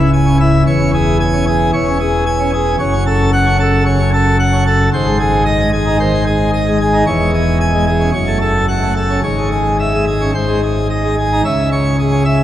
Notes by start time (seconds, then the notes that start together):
Already playing: C#1 C#2 E4
0.14 G#5
0.27 C#4
0.41 E4
0.67 E1 E2 C#5
0.81 C#4
0.94 G#4
1.20 G#5
1.33 C#4
1.47 G#4
1.73 E1 E2 C#5
1.87 C#4
2.00 G#4
2.26 G#5
2.40 C#4
2.53 G#4
2.79 F#1 F#2 C#5
2.93 C#4
3.07 A4
3.33 F#5
3.46 C#4
3.60 A4
3.86 C#3 C#5
4.00 C#4
4.14 A4
4.40 F#5
4.53 C#4
4.67 A4
4.93 G#1 G#2 C5
5.07 G#3
5.19 G#4
5.46 D#5
5.60 G#3
5.73 G#4
5.86 D#4
6.00 D#3 C5
6.13 G#3
6.27 G#4
6.54 D#5
6.68 G#3
6.81 G#4
6.93 D#4
7.07 E1 E2 C#5
7.20 G#3
7.34 G#4
7.61 G#5
7.74 G#3
7.87 G#4
8.00 C#4
8.13 F#1 F#2 C#5
8.27 A3
8.41 A4
8.68 F#5
8.83 A3
8.96 A4
9.10 C#4
9.24 G#1 G#2 C#5
9.38 G#3
9.52 G#4
9.80 E5
9.93 G#3
10.07 G#4
10.21 C#4
10.34 G#1 G#2 C5
10.48 G#3
10.63 G#4
10.90 D#5
11.04 G#3
11.18 G#4
11.32 D#4
11.45 C#2 C#3 E5
11.72 C#5
11.99 G#4
12.12 C#4
12.25 E5